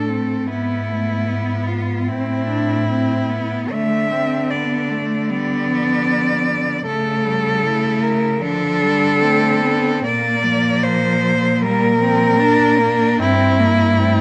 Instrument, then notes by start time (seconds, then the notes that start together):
cello
Already playing: A2 A3 A4
0.08 C4
0.46 G#2 B3 E4
0.88 A3
1.28 B3
1.67 F4
2.08 A2 C4 E4
2.48 D4
2.89 C4
3.29 B3
3.70 D3 A3 E5
4.11 C4
4.50 B3 D5
4.90 A3
5.30 G3 B3 D5
5.69 F3
6.86 C#3 A3 A4
7.25 G3
7.65 A3 E4
8.03 A#4
8.41 D3 F3 D4 A4
8.82 G3
9.21 A3 C4
9.61 B3
10.04 A#2 A#3 D5
10.44 F3
10.83 C5
11.62 G3 A#3 A#4
11.99 F3 C4
12.38 D4
12.78 A#3 D4
13.19 G2 C4 E4
13.59 A#3
13.99 A3 C4